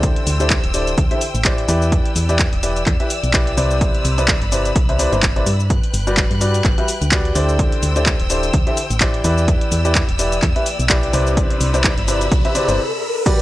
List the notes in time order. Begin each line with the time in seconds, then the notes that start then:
Already playing: D2 D3 E4 G4 C5 D5 G5 E6
0.03 kick, closed hi-hat, cabasa
0.16 closed hi-hat
0.27 D2, open hi-hat, cabasa
0.40 D3 E4 G4 C5 D5, closed hi-hat, cabasa
0.50 kick, clap, closed hi-hat, cabasa
0.64 D1, closed hi-hat
0.74 D3 E4 G4 C5 D5, open hi-hat, cabasa
0.87 closed hi-hat, cabasa
0.98 D2, kick, closed hi-hat, cabasa
1.11 D3 E4 G4 C5 E5, closed hi-hat
1.21 open hi-hat, cabasa
1.35 A1, closed hi-hat, cabasa
1.45 E3 E4 G4 C5 D5, kick, clap, closed hi-hat, cabasa
1.58 closed hi-hat
1.68 E2 E3 E4 G4 B4 D5 E6, open hi-hat, cabasa
1.82 cabasa
1.92 kick, closed hi-hat, cabasa
2.05 closed hi-hat
2.16 E2, open hi-hat, cabasa
2.29 E3 E4 G4 B4 D5, closed hi-hat, cabasa
2.39 kick, clap, closed hi-hat, cabasa
2.53 E1, closed hi-hat
2.63 E3 E4 G4 B4 D5, open hi-hat, cabasa
2.76 closed hi-hat, cabasa
2.86 E2, kick, clap, closed hi-hat, cabasa
3.00 E3 E4 G4 B4 E5, closed hi-hat
3.10 open hi-hat, cabasa
3.23 B1, closed hi-hat, cabasa
3.34 E3 E4 G4 B4 D5, kick, clap, closed hi-hat, cabasa
3.47 closed hi-hat
3.57 C2 C3 E4 B4 C5 D5, open hi-hat, cabasa
3.71 cabasa
3.81 B5, kick, closed hi-hat, cabasa
3.95 closed hi-hat
4.05 C2, open hi-hat, cabasa
4.18 C3 E4 B4 C5 D5, closed hi-hat, cabasa
4.28 kick, clap, closed hi-hat, cabasa
4.42 G1, closed hi-hat
4.52 C3 E4 B4 C5 D5, open hi-hat, cabasa
4.65 closed hi-hat, cabasa
4.76 C2, kick, closed hi-hat, cabasa
4.89 C3 E4 B4 C5 E5, closed hi-hat
4.99 C3 E4 B4 C5 D5, open hi-hat, cabasa
5.13 G1 C3 E4 B4 C5 D5, closed hi-hat, cabasa
5.23 kick, clap, closed hi-hat, cabasa
5.36 C3 E4 B4 C5 D5, closed hi-hat
5.46 G2, open hi-hat, cabasa
5.60 cabasa
5.70 B4 G5 F#6, kick, closed hi-hat, cabasa
5.83 closed hi-hat
5.94 G1, open hi-hat, cabasa
6.07 G3 F#4 G4 B4 D5, closed hi-hat, cabasa
6.17 kick, clap, closed hi-hat, cabasa
6.31 G2, closed hi-hat
6.41 G3 F#4 G4 B4 D5, open hi-hat, cabasa
6.54 closed hi-hat, cabasa
6.64 G1, kick, clap, closed hi-hat, cabasa
6.78 G3 F#4 G4 B4 E5, closed hi-hat
6.88 open hi-hat, cabasa
7.02 D2, closed hi-hat, cabasa
7.12 F#4 G4 B4 D5, kick, clap, closed hi-hat, cabasa
7.25 closed hi-hat
7.35 D2 D3 E4 G4 C5 D5 E6, open hi-hat, cabasa
7.49 cabasa
7.59 kick, closed hi-hat, cabasa
7.72 closed hi-hat
7.83 D2, open hi-hat, cabasa
7.96 D3 E4 G4 C5 D5, closed hi-hat, cabasa
8.06 kick, clap, closed hi-hat, cabasa
8.20 D1, closed hi-hat
8.30 D3 E4 G4 C5 D5, open hi-hat, cabasa
8.43 closed hi-hat, cabasa
8.53 D2, kick, closed hi-hat, cabasa
8.67 D3 E4 G4 C5 E5, closed hi-hat
8.77 open hi-hat, cabasa
8.90 A1, closed hi-hat, cabasa
9.00 E3 E4 G4 C5 D5, kick, clap, closed hi-hat, cabasa
9.14 closed hi-hat
9.24 E2 E3 E4 G4 B4 D5 E6, open hi-hat, cabasa
9.38 cabasa
9.48 kick, closed hi-hat, riser, cabasa
9.61 closed hi-hat
9.72 E2, open hi-hat, cabasa
9.85 E3 E4 G4 B4 D5, closed hi-hat, cabasa
9.95 kick, clap, closed hi-hat, cabasa
10.09 E1, closed hi-hat
10.19 E3 E4 G4 B4 D5, open hi-hat, cabasa
10.32 closed hi-hat, cabasa
10.42 E2, kick, clap, closed hi-hat, cabasa
10.56 E3 E4 G4 B4 E5, closed hi-hat
10.66 open hi-hat, cabasa
10.79 B1, closed hi-hat, cabasa
10.89 E3 E4 G4 B4 D5, kick, clap, closed hi-hat, cabasa
11.03 closed hi-hat
11.13 C2 C3 E4 B4 C5 D5, open hi-hat, cabasa
11.27 cabasa
11.37 B5 E6, kick, closed hi-hat, cabasa
11.50 closed hi-hat
11.61 C2, open hi-hat, cabasa
11.74 C3 E4 B4 C5 D5, closed hi-hat, cabasa
11.84 kick, clap, closed hi-hat, cabasa
11.98 G1, closed hi-hat
12.08 C3 E4 B4 C5 D5, open hi-hat, cabasa
12.21 closed hi-hat, cabasa
12.32 C2, kick, closed hi-hat, cabasa
12.45 C3 E4 B4 C5 E5, closed hi-hat
12.55 C3 E4 B4 C5 D5, open hi-hat, cabasa
12.68 G1 C3 E4 B4 C5 D5, closed hi-hat, cabasa
13.26 G3 F#4 G4 B4 D5 F#5 B5, kick, closed hi-hat, crash, cabasa